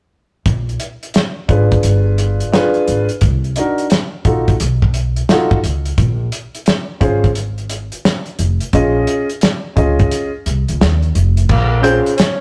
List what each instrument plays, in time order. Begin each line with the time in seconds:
0.46 upright bass A#1, kick, closed hi-hat
0.69 closed hi-hat
0.80 closed hi-hat
1.03 closed hi-hat
1.14 snare, closed hi-hat
1.48 upright bass G#1, upright piano D4 F4 G#4 B4, kick, closed hi-hat
1.71 kick, closed hi-hat
1.83 upright bass G1, closed hi-hat
2.18 closed hi-hat
2.40 closed hi-hat
2.52 upright piano D4 F4 G#4 B4, snare, closed hi-hat
2.74 closed hi-hat
2.88 upright bass G#1, closed hi-hat
3.09 closed hi-hat
3.21 upright bass C2, kick, closed hi-hat
3.44 closed hi-hat
3.56 upright piano D4 D#4 F#4 A#4, closed hi-hat
3.78 closed hi-hat
3.90 snare, closed hi-hat
4.25 upright bass A#1, upright piano D#4 F4 F#4 A4, kick, closed hi-hat
4.48 kick, closed hi-hat
4.60 upright bass B1, closed hi-hat
4.82 kick
4.94 closed hi-hat
5.16 closed hi-hat
5.29 upright piano D#4 F4 F#4 A4, snare, closed hi-hat
5.51 kick
5.63 upright bass C#2, closed hi-hat
5.85 closed hi-hat
5.98 upright bass A#1, kick, closed hi-hat
6.32 closed hi-hat
6.55 closed hi-hat
6.66 snare, closed hi-hat
7.00 upright bass G#1, upright piano C#4 F4 G#4 C5, kick, closed hi-hat
7.24 kick, closed hi-hat
7.35 closed hi-hat
7.58 closed hi-hat
7.70 closed hi-hat
7.92 closed hi-hat
8.05 snare, closed hi-hat
8.26 closed hi-hat
8.39 upright bass F1, closed hi-hat
8.60 closed hi-hat
8.73 upright bass A#1, upright piano C#4 F4 G#4 D#5, kick, closed hi-hat
9.07 closed hi-hat
9.30 closed hi-hat
9.41 snare, closed hi-hat
9.76 upright bass C#2, upright piano C#4 F4 G#4 D#5, kick, closed hi-hat
9.99 kick, closed hi-hat
10.11 closed hi-hat
10.46 upright bass C2, closed hi-hat
10.68 upright bass C#2, closed hi-hat
10.81 upright bass D#2, snare, closed hi-hat
11.03 closed hi-hat
11.15 upright bass F1, closed hi-hat
11.37 closed hi-hat
11.49 upright bass A#1, tenor saxophone A#3, kick, crash
11.82 tenor saxophone C4, upright piano C#4 F4 G#4 C5, closed hi-hat
12.06 closed hi-hat
12.17 tenor saxophone C#4, snare, closed hi-hat